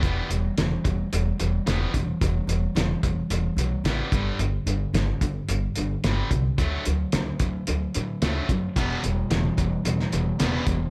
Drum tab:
HH |x-x-x-x-x-x-x-x-|x-x-x-x-x-x-x-x-|x-x-x-x-x-x-x-x-|x-x-x-x-x-x-x-x-|
SD |----o-------o---|----o-------o---|----o-------o---|----o-------o---|
BD |o-----o-------o-|o-----o-------o-|------o-------o-|o-----o-------o-|

HH |x-x-x-x-x-x-x-x-|
SD |----o----o--o---|
BD |o-----o-------o-|